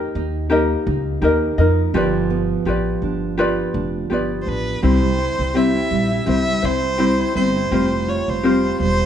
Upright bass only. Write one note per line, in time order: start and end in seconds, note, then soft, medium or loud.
0.15 0.74 D#2 medium
0.87 1.16 C#2 medium
1.22 1.52 D#2 medium
1.58 1.88 F2 medium
1.94 2.53 G1 medium
2.65 2.95 A1 medium
3.02 3.61 G1 medium
3.74 4.04 F1 medium
4.11 4.40 G1 medium
4.47 4.76 A1 medium
4.83 5.29 C2 medium
5.39 5.82 C2 medium
5.91 6.20 A#1 medium
6.27 6.57 C2 medium
6.63 7.22 C2 medium
7.35 7.65 G1 medium
7.71 8.17 F1 medium
8.28 8.71 F1 medium
8.80 9.06 E1 medium